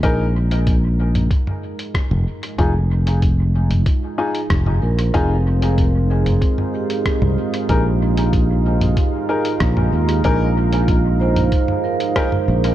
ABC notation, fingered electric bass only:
X:1
M:4/4
L:1/16
Q:1/4=94
K:Fm
V:1 name="Fingered electric bass" clef=bass
B,,,8 z4 z F,,, z2 | F,,,8 z4 F,,,2 B,,,2 | F,,,8 z4 z C,, z2 | B,,,8 z4 B,,,2 E,,2 |
B,,,8 z6 B,,,2 |]